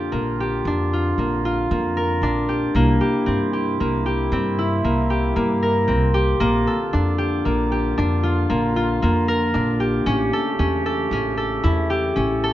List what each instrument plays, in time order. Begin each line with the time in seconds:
Already playing: woodwind section D3 A#3 F4, harp C4 D4 F4 G4 A4
0.12 upright bass A#1, harp A#3
0.40 harp G4
0.65 upright bass F2, harp D4
0.93 woodwind section C4, harp F4
1.18 upright bass A#1, harp A#3
1.45 harp F4
1.71 upright bass F2, harp A#3
1.97 harp A#4
2.22 upright bass A#1, harp D4
2.49 harp G4
2.75 upright bass C2, woodwind section C3 A#3 E4, harp A#3
3.01 harp G4
3.26 upright bass G2, harp C4
3.53 harp G4
3.80 upright bass C2, harp A#3
4.06 harp G4
4.32 upright bass G2, harp C4
4.59 harp E4
4.84 upright bass C2, harp A#3
5.10 harp G4
5.36 upright bass G2, harp A#3
5.63 harp A#4
5.88 upright bass C2, harp C4
6.14 harp G4
6.40 upright bass A#1, woodwind section D3 F4, harp A#3
6.67 harp A4
6.93 upright bass F2, harp D4
7.18 harp G4
7.45 upright bass A#1, harp A#3
7.72 harp G4
7.98 upright bass F2, harp D4
8.23 harp F4
8.50 upright bass A#1, harp A#3
8.76 harp F4
9.02 upright bass F2, harp A#3
9.28 harp A#4
9.54 upright bass A#1, harp D4
9.80 harp G4
10.06 upright bass A1, woodwind section C#3 A3 G4, harp C#4
10.33 harp A4
10.59 upright bass E2, harp C#4
10.86 harp A4
11.11 upright bass A1, harp C#4
11.37 harp A4
11.63 upright bass E2, harp E4
11.90 harp G4, woodwind section A4
12.16 upright bass A1, harp C#4
12.44 harp A4